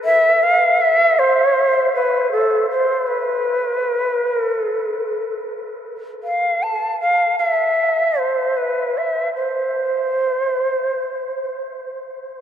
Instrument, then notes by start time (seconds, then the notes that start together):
shakuhachi
0.04 E5
0.43 F5
0.81 E5
1.19 C5
1.94 B4
2.32 A4
2.70 C5
3.07 B4
4.28 A#4
4.57 A4
6.23 F5
6.63 A5
7.00 F5
7.38 E5
8.19 C5
8.56 B4
8.97 E5
9.34 C5